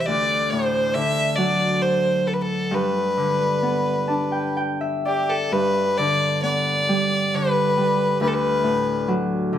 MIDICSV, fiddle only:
0, 0, Header, 1, 2, 480
1, 0, Start_track
1, 0, Key_signature, 1, "major"
1, 0, Tempo, 878477
1, 40, Time_signature, 3, 2, 24, 8
1, 1481, Tempo, 931677
1, 3401, Tempo, 883652
1, 5110, End_track
2, 0, Start_track
2, 0, Title_t, "Fiddle"
2, 0, Program_c, 0, 110
2, 1, Note_on_c, 0, 76, 66
2, 33, Note_on_c, 0, 74, 89
2, 41, Note_off_c, 0, 76, 0
2, 272, Note_on_c, 0, 72, 80
2, 280, Note_off_c, 0, 74, 0
2, 515, Note_on_c, 0, 76, 96
2, 523, Note_off_c, 0, 72, 0
2, 744, Note_on_c, 0, 74, 84
2, 752, Note_off_c, 0, 76, 0
2, 992, Note_on_c, 0, 72, 77
2, 1000, Note_off_c, 0, 74, 0
2, 1241, Note_on_c, 0, 69, 69
2, 1250, Note_off_c, 0, 72, 0
2, 1276, Note_on_c, 0, 71, 61
2, 1284, Note_off_c, 0, 69, 0
2, 1319, Note_on_c, 0, 69, 74
2, 1327, Note_off_c, 0, 71, 0
2, 1499, Note_on_c, 0, 71, 78
2, 1506, Note_off_c, 0, 69, 0
2, 2447, Note_off_c, 0, 71, 0
2, 2696, Note_on_c, 0, 67, 68
2, 2814, Note_on_c, 0, 69, 74
2, 2822, Note_off_c, 0, 67, 0
2, 2927, Note_on_c, 0, 71, 83
2, 2934, Note_off_c, 0, 69, 0
2, 3163, Note_on_c, 0, 74, 86
2, 3171, Note_off_c, 0, 71, 0
2, 3390, Note_off_c, 0, 74, 0
2, 3393, Note_on_c, 0, 74, 84
2, 3897, Note_on_c, 0, 71, 82
2, 3905, Note_off_c, 0, 74, 0
2, 4364, Note_off_c, 0, 71, 0
2, 4367, Note_on_c, 0, 71, 80
2, 4401, Note_on_c, 0, 69, 70
2, 4410, Note_off_c, 0, 71, 0
2, 4435, Note_on_c, 0, 71, 80
2, 4443, Note_off_c, 0, 69, 0
2, 4841, Note_off_c, 0, 71, 0
2, 5110, End_track
0, 0, End_of_file